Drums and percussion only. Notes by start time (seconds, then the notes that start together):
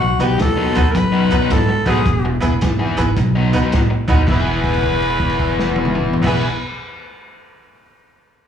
0.20 closed hi-hat
0.39 snare, closed hi-hat
0.75 closed hi-hat
0.95 kick, snare, closed hi-hat
1.31 closed hi-hat
1.50 snare, closed hi-hat
1.86 kick, closed hi-hat
2.06 kick, closed hi-hat
2.41 closed hi-hat
2.61 snare, closed hi-hat
2.97 closed hi-hat
3.17 kick, snare, closed hi-hat
3.53 closed hi-hat
3.72 snare, closed hi-hat
4.08 kick, closed hi-hat
4.28 kick, crash
4.64 kick, crash
4.74 crash
4.83 kick, crash
5.02 crash
5.20 kick, crash
5.29 crash
5.39 kick, crash
5.59 snare
5.76 high tom
5.85 mid tom
5.95 mid tom
6.14 floor tom
6.24 kick, snare, crash